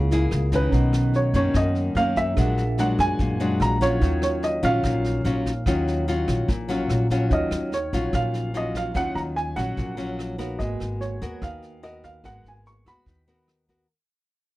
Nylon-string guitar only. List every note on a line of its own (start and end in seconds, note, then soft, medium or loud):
0.00 0.71 C#3 soft
0.12 0.50 A#3 medium
0.12 0.50 E4 medium
0.12 0.50 G#4 medium
0.53 1.31 D#3 medium
0.53 1.32 C#4 medium
0.73 1.53 B2 soft
1.34 1.93 D#3 medium
1.34 1.93 A#3 medium
1.34 1.93 C#4 medium
1.55 2.35 F#2 medium
1.97 2.34 D#3 medium
1.97 2.35 A#3 soft
1.97 2.35 C#4 medium
2.37 3.17 A#2 soft
2.37 2.64 F#3 soft
2.37 2.64 G#3 soft
2.37 2.64 D4 medium
2.79 3.37 F#3 soft
2.79 3.37 G#3 soft
2.79 3.37 D4 medium
3.20 4.00 A#2 medium
3.40 3.78 F#3 medium
3.40 3.78 G#3 medium
3.40 3.78 D4 medium
3.81 4.60 F#3 medium
3.81 4.60 C#4 soft
3.81 4.60 F4 medium
4.02 4.82 D#3 medium
4.63 5.21 F#3 medium
4.63 5.21 C#4 medium
4.63 5.22 F4 medium
4.84 5.64 A#2 medium
5.25 5.51 F#3 medium
5.25 5.52 C#4 medium
5.25 5.52 F4 medium
5.67 6.47 D#3 soft
5.67 6.04 F#3 soft
5.67 6.04 C#4 soft
5.67 6.05 F4 medium
6.08 6.48 F#3 medium
6.08 6.48 C#4 medium
6.08 6.49 F4 medium
6.49 7.28 A#2 soft
6.69 7.06 F#3 medium
6.69 7.07 C#4 medium
6.69 7.07 F4 medium
7.11 7.70 F#3 medium
7.11 7.71 C#4 medium
7.11 7.71 F4 medium
7.32 8.11 D#3 soft
7.93 8.51 F#3 soft
7.93 8.51 C#4 medium
7.93 8.51 F4 medium
8.13 8.93 A#2 medium
8.54 8.92 F#3 soft
8.54 8.92 C#4 medium
8.54 8.92 F4 soft
8.94 9.75 D#3 soft
8.94 9.53 F#3 soft
8.94 9.53 C#4 soft
8.94 9.53 F4 soft
9.56 9.94 F#3 medium
9.56 9.94 C#4 medium
9.77 10.57 A#2 soft
9.97 10.35 F#3 medium
9.97 10.35 C#4 medium
9.97 10.36 F4 medium
10.38 11.18 B3 medium
10.38 11.18 F#4 medium
10.38 11.18 A#4 medium
10.59 11.40 G#3 soft
11.22 11.80 B3 medium
11.22 11.80 F#4 medium
11.22 11.80 A#4 medium
11.42 12.22 D#3 soft
11.83 12.21 B3 medium
11.83 12.21 F#4 soft
11.83 12.21 A#4 soft
12.24 13.04 G#3 soft
12.24 12.83 B3 soft
12.24 12.83 F#4 soft
12.24 12.83 A#4 medium
12.86 13.24 B3 medium
12.86 13.24 F#4 medium
13.07 13.87 D#3 soft
13.28 13.65 B3 medium
13.28 13.65 F#4 medium
13.28 13.65 A#4 medium
13.69 13.86 B3 soft
13.69 13.86 F#4 soft
13.69 13.86 A#4 soft